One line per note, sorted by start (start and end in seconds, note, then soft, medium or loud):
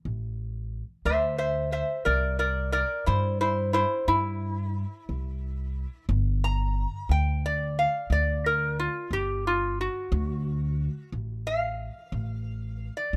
0.05 0.81 A1 medium
1.05 1.81 D2 medium
1.05 1.37 C5 medium
1.05 1.38 E5 medium
1.38 1.70 C5 medium
1.38 1.72 E5 medium
1.72 2.04 C5 medium
1.72 2.06 E5 medium
2.05 2.82 C2 medium
2.05 2.37 A#4 medium
2.05 2.38 D5 medium
2.39 2.71 A#4 medium
2.39 2.72 D5 medium
2.72 3.04 A#4 medium
2.72 3.06 D5 medium
3.06 3.83 G2 medium
3.06 3.38 E4 medium
3.06 3.40 C5 medium
3.41 3.72 E4 medium
3.41 3.73 C5 medium
3.73 4.05 E4 medium
3.73 4.07 C5 medium
4.08 4.83 G2 medium
4.08 6.05 E4 medium
5.09 5.84 C2 medium
6.09 6.85 G1 loud
6.44 7.09 A#5 medium
7.09 7.85 D2 medium
7.09 7.43 G5 medium
7.46 7.77 D5 medium
7.79 8.10 F5 medium
8.10 8.86 D2 medium
8.10 8.44 D5 medium
8.46 8.78 A#4 medium
8.80 9.11 F4 medium
9.11 9.86 G1 medium
9.11 9.45 G4 medium
9.47 9.78 F4 medium
9.81 11.09 F#4 medium
10.12 10.87 D2 loud
11.12 11.88 A1 medium
11.47 12.93 F5 medium
12.12 12.88 A1 medium
12.97 13.16 D5 medium
13.13 13.16 D2 medium